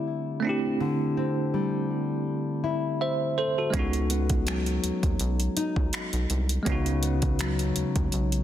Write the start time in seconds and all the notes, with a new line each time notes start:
Already playing: D3 G3 A3 C4 D4 E4 G4
0.40 A3 C4
0.45 D4 E4
0.49 G4
0.80 D3
1.17 C4
1.54 G3
2.64 E4
3.01 C5 E5
3.38 A4 C5
3.58 F#4 A4
3.70 C#2 G#3 B3, kick, closed hi-hat
3.75 C#4 D#4
3.79 F#4
3.93 closed hi-hat
4.10 B3, closed hi-hat
4.30 kick, closed hi-hat
4.47 F#3, finger snap, closed hi-hat
4.66 closed hi-hat
4.84 D#2, closed hi-hat
5.03 D#2, kick, closed hi-hat
5.20 B1, closed hi-hat
5.40 closed hi-hat
5.57 D#4, closed hi-hat
5.76 C#2, kick
5.93 finger snap, closed hi-hat
6.13 B1, closed hi-hat
6.30 C2, closed hi-hat
6.49 closed hi-hat
6.63 C#2 C#3 G#3 B3, kick, closed hi-hat
6.67 C#4 D#4
6.72 F#4
6.86 closed hi-hat
7.03 B3, closed hi-hat
7.22 kick, closed hi-hat
7.39 F#3, finger snap, closed hi-hat
7.59 closed hi-hat
7.76 D#2, closed hi-hat
7.96 D#2, kick, closed hi-hat
8.12 B1, closed hi-hat
8.32 closed hi-hat